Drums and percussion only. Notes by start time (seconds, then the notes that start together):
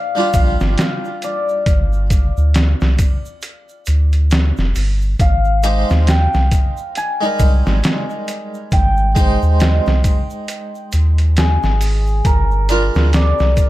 0.16 shaker
0.33 kick, closed hi-hat, triangle, shaker
0.60 snare, shaker
0.78 snare, closed hi-hat, shaker
1.05 shaker
1.22 closed hi-hat, shaker
1.49 shaker
1.66 kick, closed hi-hat, shaker
1.93 shaker
2.10 kick, closed hi-hat, shaker
2.37 shaker
2.54 snare, closed hi-hat, shaker
2.81 snare, shaker
2.99 kick, closed hi-hat, triangle, shaker
3.25 shaker
3.42 closed hi-hat, shaker
3.69 shaker
3.86 closed hi-hat, shaker
4.12 closed hi-hat, shaker
4.31 snare, closed hi-hat, shaker
4.57 snare, shaker
4.75 open hi-hat, shaker
5.01 shaker
5.19 kick, closed hi-hat, shaker
5.45 shaker
5.63 closed hi-hat, shaker
5.89 snare, shaker
6.07 snare, closed hi-hat, shaker
6.33 snare, shaker
6.51 kick, closed hi-hat, shaker
6.77 shaker
6.95 closed hi-hat, shaker
7.22 shaker
7.39 kick, closed hi-hat, triangle, shaker
7.66 snare, shaker
7.83 snare, closed hi-hat, shaker
8.10 shaker
8.28 closed hi-hat, shaker
8.54 shaker
8.72 kick, closed hi-hat, shaker
8.97 shaker
9.16 kick, closed hi-hat, shaker
9.42 shaker
9.60 snare, closed hi-hat, shaker
9.86 snare, shaker
10.04 kick, closed hi-hat, triangle, shaker
10.30 shaker
10.48 closed hi-hat, shaker
10.75 shaker
10.92 closed hi-hat, shaker
11.18 closed hi-hat, shaker
11.37 snare, closed hi-hat, shaker
11.63 snare, shaker
11.81 open hi-hat, shaker
12.07 shaker
12.25 kick, closed hi-hat, shaker
12.51 shaker
12.69 closed hi-hat, shaker
12.95 snare, shaker
13.13 snare, closed hi-hat, shaker
13.39 snare, shaker
13.57 kick, closed hi-hat, shaker